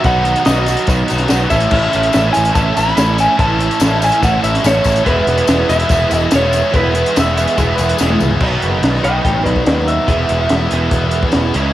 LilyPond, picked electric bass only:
\new Staff \with { instrumentName = "Picked electric bass" } { \clef bass \time 4/4 \key e \major \tempo 4 = 144 b,,4 b,,4 b,,8 b,,8 b,,8 a,,8 | a,,8 a,,8 a,,8 a,,8 a,,8 a,,8 a,,4 | a,,4 a,,4 a,,8 a,,8 a,,8 a,,8 | e,,8 e,,8 e,,8 e,,8 e,,8 e,,8 e,,4 |
e,,4 e,,4 e,,8 e,,8 e,,8 cis,8 | b,,8 fis,,8 b,,8 b,,8 a,,8 b,,8 dis,4 | e,,8 e,,8 e,,8 e,,8 e,,4 e,,8 cis,8 | }